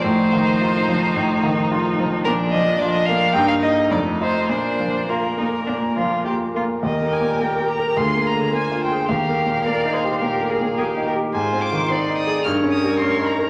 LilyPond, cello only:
\new Staff \with { instrumentName = "Cello" } { \time 4/4 \key bes \major \tempo 4 = 107 f1 | f4 f4 bes4 a4 | bes4 bes2~ bes8 r8 | \key ees \major bes'2 f'4 f'4 |
g'4 bes'8 aes'8 g'8 bes'8 aes'8 g'8 | f'4 ees'4 bes'2 | }